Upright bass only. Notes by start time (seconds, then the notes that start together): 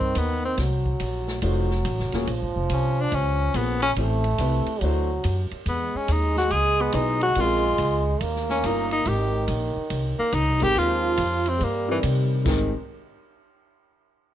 Already playing: G2
0.16 D#2
0.57 C2
1.00 A#1
1.42 F1
1.85 A1
1.99 F1
2.13 D#1
2.27 A#1
2.42 G#1
2.56 F1
2.70 C2
3.12 C#2
3.54 A#1
3.97 A1
4.39 C2
4.66 muted upright bass stroke
4.81 D2
5.24 F#2
5.51 muted upright bass stroke
5.66 E2
5.95 muted upright bass stroke
6.08 D#2
6.51 C#2
6.93 B1
7.36 A#1
7.79 C#2
8.21 D#2
8.64 G1
9.06 G#1
9.48 A#1
9.76 muted upright bass stroke
9.90 C2
10.19 muted upright bass stroke
10.33 C#2
10.48 C2
10.62 G#1
10.75 D#2
11.18 F2
11.61 G2
12.03 C3
12.46 G#1